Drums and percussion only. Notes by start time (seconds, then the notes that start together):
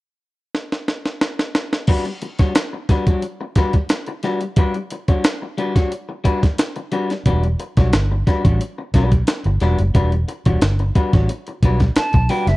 0.55 snare
0.72 snare
0.88 snare
1.06 snare
1.21 snare
1.39 snare
1.55 snare
1.73 snare
1.87 kick, crash
2.05 closed hi-hat
2.22 closed hi-hat
2.39 kick, snare, closed hi-hat
2.55 snare, closed hi-hat
2.89 kick, snare, closed hi-hat
3.07 kick, closed hi-hat
3.22 closed hi-hat
3.55 kick, snare, closed hi-hat
3.73 kick, closed hi-hat
3.89 snare, closed hi-hat
4.06 closed hi-hat
4.23 snare, closed hi-hat
4.41 closed hi-hat
4.56 kick, closed hi-hat
4.74 closed hi-hat
4.90 closed hi-hat
5.08 kick, closed hi-hat
5.24 snare, closed hi-hat
5.58 closed hi-hat
5.76 kick, snare, closed hi-hat
5.92 closed hi-hat
6.25 kick, closed hi-hat
6.43 kick, snare, closed hi-hat
6.58 snare, closed hi-hat
6.76 closed hi-hat
6.92 closed hi-hat
7.10 snare, closed hi-hat
7.26 kick, closed hi-hat
7.43 closed hi-hat
7.60 closed hi-hat
7.77 kick, snare, closed hi-hat
7.93 snare, closed hi-hat
8.27 kick, snare, closed hi-hat
8.45 kick, closed hi-hat
8.61 closed hi-hat
8.94 kick, snare, closed hi-hat
9.12 kick, closed hi-hat
9.27 snare, closed hi-hat
9.44 closed hi-hat
9.60 snare, closed hi-hat
9.79 closed hi-hat
9.95 kick, closed hi-hat
10.12 closed hi-hat
10.28 closed hi-hat
10.45 kick, closed hi-hat
10.62 snare, closed hi-hat
10.79 closed hi-hat
10.95 kick, closed hi-hat
11.13 kick, snare, closed hi-hat
11.29 closed hi-hat
11.47 closed hi-hat
11.63 kick, closed hi-hat
11.80 kick, snare, closed hi-hat
11.96 snare, closed hi-hat
12.13 kick, closed hi-hat
12.29 open hi-hat
12.47 snare, closed hi-hat